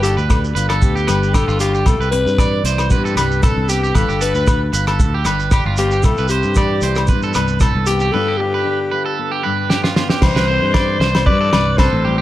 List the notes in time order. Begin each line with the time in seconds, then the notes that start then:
Already playing: G1 G2 F4
0.03 D4 G4 A4, closed hi-hat, shekere
0.17 D2 B4, shekere
0.29 D3, kick, cross-stick, low agogo, shekere
0.44 shekere
0.55 G1 F4 B4, closed hi-hat, shekere
0.69 A4, cross-stick, low agogo, shekere
0.82 D2 B3 G4, kick, shekere
0.95 G4, shekere
1.07 G1 G2 B4, cross-stick, closed hi-hat, low agogo, shekere
1.23 shekere
1.34 D4 G4 A4, kick, cross-stick, low agogo, shekere
1.48 G1 F4, shekere
1.60 B3 F4 G4, closed hi-hat, shekere
1.74 G4, shekere
1.86 C2 C3 E4 A4, kick, cross-stick, low agogo, shekere
2.00 C2 B4, shekere
2.11 C4 B4, muted clean electric guitar stroke, closed hi-hat
2.26 G2, shekere
2.38 E3 D5, kick, cross-stick, low agogo, shekere
2.64 C2 E4 C5, closed hi-hat, shekere
2.78 cross-stick, low agogo, shekere
2.90 G2 B3 G4 B4, kick, shekere
3.05 A4, shekere
3.16 C2 G2 B4, cross-stick, closed hi-hat, low agogo, shekere
3.32 shekere
3.42 C4 A4, kick, cross-stick, low agogo, shekere
3.56 C2
3.69 B3 G4, closed hi-hat, shekere
3.83 G4, shekere
3.95 G1 G2 F4 A4 B4, kick, cross-stick, low agogo, shekere
4.08 G1 G4, shekere
4.21 D4 A4 B4, closed hi-hat, shekere
4.35 D2 B4, shekere
4.46 muted nylon-string guitar stroke, kick, cross-stick, low agogo, shekere
4.73 G1 F4 B4, closed hi-hat, shekere
4.87 A4, cross-stick, low agogo, shekere
5.00 D2, muted nylon-string guitar stroke, kick, shekere
5.14 G4
5.25 G1 G2 B4, cross-stick, closed hi-hat, low agogo, shekere
5.40 shekere
5.51 D4 G4, kick, cross-stick, low agogo, shekere
5.65 G1 F4
5.77 B3 F4 G4, closed hi-hat, shekere
5.91 G4, shekere
6.03 C2 C3 E4 A4, kick, cross-stick, low agogo, shekere
6.17 C2 B4, shekere
6.28 C4 G4 C5, closed hi-hat, shekere
6.43 G2, shekere
6.55 E3 D5, kick, cross-stick, low agogo, shekere
6.81 C2 E4 C5, closed hi-hat, shekere
6.95 cross-stick, low agogo, shekere
7.07 G2 B3 B4, kick, shekere
7.22 A4, shekere
7.34 C2 G2 B4, cross-stick, closed hi-hat, low agogo, shekere
7.48 shekere
7.60 C4 A4, kick, cross-stick, low agogo, shekere
7.75 C2
7.86 B3 G4, closed hi-hat, shekere
8.00 G4, shekere
8.12 G2 D3 B3 F4 A4 B4, muted nylon-string guitar stroke
8.28 G4
8.37 D4 G4, muted clean electric guitar stroke
8.54 B4
8.66 D3
8.91 F4 B4
9.06 A4
9.19 B3
9.31 G4
9.43 G2 B4
9.70 D4 G4, snare
9.84 F4, snare
9.96 B3 F4, snare
10.10 G4, snare
10.22 C2 C3 E3 C4 C5, muted nylon-string guitar stroke, kick, snare, crash, low agogo
10.26 E4
10.35 C2 B4, snare
10.48 C4 C5
10.62 G2
10.74 E3 D5, kick, snare, low agogo
11.00 C2 E4 C5, snare
11.15 snare, low agogo
11.26 G2 G3 B4 D5, kick
11.41 A4
11.53 C2 G2 B4, snare, low agogo
11.77 C4 A4 C5, kick, snare, low agogo
11.93 A1
12.05 G3 G4
12.18 G4